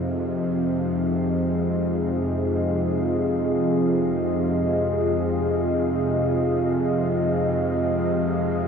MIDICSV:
0, 0, Header, 1, 4, 480
1, 0, Start_track
1, 0, Key_signature, -4, "minor"
1, 0, Tempo, 500000
1, 8331, End_track
2, 0, Start_track
2, 0, Title_t, "Synth texture"
2, 0, Program_c, 0, 99
2, 0, Note_on_c, 0, 65, 89
2, 0, Note_on_c, 0, 77, 84
2, 8331, Note_off_c, 0, 65, 0
2, 8331, Note_off_c, 0, 77, 0
2, 8331, End_track
3, 0, Start_track
3, 0, Title_t, "Ambient pad"
3, 0, Program_c, 1, 92
3, 0, Note_on_c, 1, 65, 80
3, 0, Note_on_c, 1, 68, 84
3, 0, Note_on_c, 1, 70, 90
3, 0, Note_on_c, 1, 75, 72
3, 290, Note_off_c, 1, 70, 0
3, 8331, Note_off_c, 1, 65, 0
3, 8331, Note_off_c, 1, 68, 0
3, 8331, Note_off_c, 1, 75, 0
3, 8331, End_track
4, 0, Start_track
4, 0, Title_t, "Synth drone"
4, 0, Program_c, 2, 95
4, 0, Note_on_c, 2, 41, 80
4, 0, Note_on_c, 2, 48, 74
4, 8331, Note_off_c, 2, 41, 0
4, 8331, Note_off_c, 2, 48, 0
4, 8331, End_track
0, 0, End_of_file